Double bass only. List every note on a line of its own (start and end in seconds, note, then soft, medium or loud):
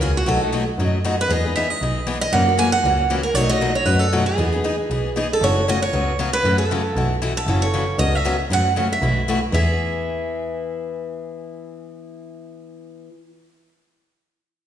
0.00 0.22 C#2 medium
0.26 0.68 B1 medium
0.78 1.19 F#2 medium
1.29 1.70 E2 medium
1.81 2.22 B1 medium
2.33 2.74 F#2 medium
2.84 3.25 C#2 medium
3.34 3.76 B1 medium
3.85 4.27 F#2 medium
4.38 4.79 E2 medium
4.89 5.31 B1 medium
5.41 5.83 F#1 medium
5.92 6.34 C#2 medium
6.43 6.85 F#2 medium
6.95 7.37 B1 medium
7.46 7.88 F#1 medium
7.98 8.40 C#2 medium
8.50 8.91 F#2 medium
9.01 9.43 B1 medium
9.52 12.34 E2 medium